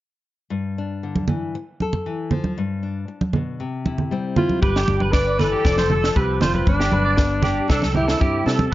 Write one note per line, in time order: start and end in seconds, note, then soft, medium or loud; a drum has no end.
0.50 1.54 G2 medium
0.78 1.55 D4 soft
1.03 1.28 D3 medium
1.16 high conga medium
1.28 1.54 E3 medium
1.28 low conga medium
1.55 muted nylon-string guitar stroke medium
1.80 2.55 A4 medium
1.80 high conga medium
1.93 low conga soft
2.06 2.32 E3 medium
2.31 2.57 F3 medium
2.31 low conga medium
2.44 high conga medium
2.58 3.08 G2 medium
2.83 3.60 D4 medium
3.08 muted nylon-string guitar stroke medium
3.21 high conga medium
3.33 3.61 B2 medium
3.33 low conga medium
3.60 4.62 C3 medium
3.86 4.36 E4 medium
3.86 high conga medium
3.98 low conga medium
4.11 4.59 G3 medium
4.11 4.60 C4 medium
4.36 4.60 E4 medium
4.36 4.61 F4 medium
4.36 low conga medium
4.49 high conga medium
4.62 4.85 G1 loud
4.62 5.65 G2 medium
4.62 5.14 G4 medium
4.62 4.75 B4 medium
4.62 kick medium
4.76 5.00 G4 medium
4.76 snare medium
4.88 5.54 G1 medium
4.88 5.65 D4 medium
4.88 high conga medium
5.00 5.13 B4 medium
5.00 high conga medium
5.12 5.39 D3 medium
5.12 5.42 B4 medium
5.12 5.38 D5 medium
5.12 kick medium
5.12 snare medium
5.39 5.65 E3 medium
5.39 6.19 A4 loud
5.39 5.51 B4 medium
5.39 snare soft
5.39 low conga medium
5.52 5.64 G4 medium
5.64 6.09 F1 medium
5.64 6.67 F3 medium
5.64 5.77 D5 medium
5.64 kick medium
5.64 snare medium
5.77 5.90 C5 medium
5.77 snare medium
5.77 high conga medium
5.90 6.15 F4 medium
5.90 6.15 A4 medium
5.90 low conga medium
6.04 snare medium
6.16 6.38 C2 medium
6.16 6.41 C4 medium
6.16 6.64 F4 medium
6.16 6.43 G4 medium
6.16 6.40 B4 medium
6.16 kick medium
6.41 6.63 F1 medium
6.41 6.64 C4 medium
6.41 6.67 F4 medium
6.41 6.54 C5 medium
6.41 snare medium
6.41 low conga medium
6.54 6.79 B4 medium
6.54 high conga medium
6.65 6.89 G1 loud
6.65 7.69 G2 medium
6.65 7.41 D4 medium
6.65 kick medium
6.80 6.92 G4 medium
6.80 snare medium
6.92 7.59 G1 medium
6.92 7.66 B4 medium
6.92 7.05 B4 medium
6.92 high conga medium
7.05 7.17 D5 medium
7.16 7.66 G3 medium
7.16 7.66 B3 medium
7.16 muted clean electric guitar stroke medium
7.16 kick medium
7.16 snare medium
7.42 7.69 D4 medium
7.42 7.68 D4 medium
7.42 7.68 G4 medium
7.42 snare soft
7.42 low conga medium
7.68 8.14 C2 medium
7.68 8.71 C3 medium
7.68 7.83 D4 medium
7.68 7.94 A4 medium
7.68 kick medium
7.68 snare medium
7.82 snare medium
7.82 high conga medium
7.94 8.19 C4 medium
7.94 8.20 E4 medium
7.94 8.07 G4 medium
7.94 low conga medium
8.08 8.20 A4 medium
8.08 snare medium
8.19 8.43 G2 medium
8.19 8.68 G3 medium
8.19 8.45 C4 medium
8.19 8.57 E4 medium
8.19 8.45 G4 medium
8.19 kick medium
8.46 8.69 C3 medium
8.46 8.69 C4 medium
8.46 8.71 A4 medium
8.46 snare medium
8.59 high conga medium